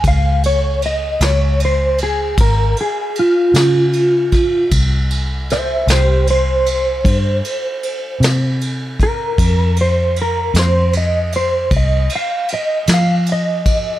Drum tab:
RD |xxxxxxxxxxxx|xxxxxxxxxxxx|xxxxxxxxxxxx|
SD |---o-----o-o|--oo-----o--|---o-----o--|
BD |o-----o----o|o-----o----o|o-----o----o|